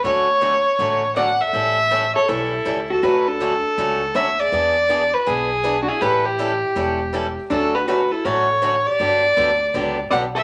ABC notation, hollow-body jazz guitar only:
X:1
M:4/4
L:1/16
Q:"Swing" 1/4=161
K:D
V:1 name="Hollow-body jazz guitar"
z12 d2 A2- | A6 A2 E6 F2 | F2 D8- D2 c2 ^G2- | ^G6 F2 E4- E3/2 D/2 E2 |
G2 E12 z2 | D2 F2 F2 E2 A6 G2- | G8- G2 z2 d2 A2 |]